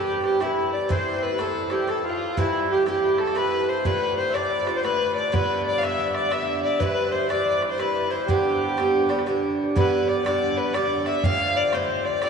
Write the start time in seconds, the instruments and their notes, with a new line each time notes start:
Already playing: bouzouki G2 E3 C4 E4, fiddle G4, accordion G4
0.24 fiddle G4, bodhran
0.40 bouzouki G2 E3 C4 E4, fiddle E4, accordion E4, bodhran
0.72 fiddle D5, accordion D5
0.89 bouzouki A2 E3 C4 E4, fiddle C5, accordion C5, bodhran
1.22 accordion B4, fiddle B4
1.38 bouzouki A2 E3 C4 E4, accordion A4, fiddle A4, bodhran
1.70 bouzouki E3 C4 E4, accordion G4, fiddle G4, bodhran
1.87 bouzouki A2 C4, accordion A4, fiddle A4, bodhran
2.04 accordion F4, fiddle F4
2.37 bouzouki G2 E3 C4 E4, fiddle E4, accordion E4, bodhran
2.70 fiddle G4, accordion G4
2.86 bouzouki G2 E3 C4 E4, fiddle G4, accordion G4, bodhran
3.18 fiddle A4, accordion A4, bodhran
3.27 bodhran
3.35 bouzouki G2 E3 C4 E4, fiddle B4, accordion B4, bodhran
3.68 accordion C5, fiddle C5
3.85 bouzouki A2 D3 A3 F4, fiddle B4, accordion B4, bodhran
4.17 fiddle C5, accordion C5
4.29 accordion E5
4.34 bouzouki A2 D3 A3 F4, fiddle D5, accordion D5, bodhran
4.66 bouzouki D3 A3 F4, bodhran
4.76 fiddle C5, accordion C5
4.83 bouzouki A2 D3 A3 F4, fiddle B4, accordion B4, bodhran
5.16 fiddle D5, accordion D5
5.32 bouzouki G2 D3 B3 D4, accordion B4, fiddle B4, bodhran
5.65 accordion D5, fiddle D5
5.78 bouzouki G2, fiddle F5
5.82 bouzouki D3 B3 D4, accordion E5, fiddle E5, bodhran
6.14 accordion D5, fiddle D5, bodhran
6.30 bouzouki G2 D3 B3 D4, accordion E5, fiddle E5, bodhran
6.47 accordion E5
6.63 fiddle D5, accordion E5
6.79 bouzouki G2 E3 C4 E4, accordion B4, fiddle B4, bodhran
7.11 accordion C5, fiddle C5
7.29 bouzouki G2 E3 C4 E4, accordion D5, fiddle D5, bodhran
7.62 bodhran
7.70 accordion C5, fiddle C5
7.78 bouzouki G2 E3 C4 E4, accordion B4, fiddle B4, bodhran
8.10 bouzouki E3 C4 E4, accordion C5, fiddle C5
8.27 bouzouki G2 D3 B3 D4, accordion G4, fiddle G4, bodhran
8.77 bouzouki G2 D3 B3 D4, bodhran
9.09 bouzouki D3 B3 D4, bodhran
9.19 bodhran
9.26 bouzouki G2 D3 B3 D4, bodhran
9.76 bouzouki G2 D3 B3 D4, fiddle B4, accordion B4, bodhran
10.08 fiddle D5, accordion D5
10.24 bouzouki G2 D3 B3 D4, fiddle D5, accordion D5, bodhran
10.57 fiddle B4, accordion B4
10.73 bouzouki G2 D3 B3 D4, fiddle D5, accordion D5, bodhran
11.06 bouzouki D3 B3 D4, accordion E5, fiddle E5, bodhran
11.23 bouzouki A2 D3 C4 F4, accordion F5, fiddle F5, bodhran
11.39 bodhran
11.56 fiddle D5
11.71 bouzouki A2 D3 C4 F4, accordion C5, fiddle C5, bodhran
12.03 accordion D5, fiddle D5
12.21 bouzouki A2 D3 C4 F4, accordion D5, fiddle D5, bodhran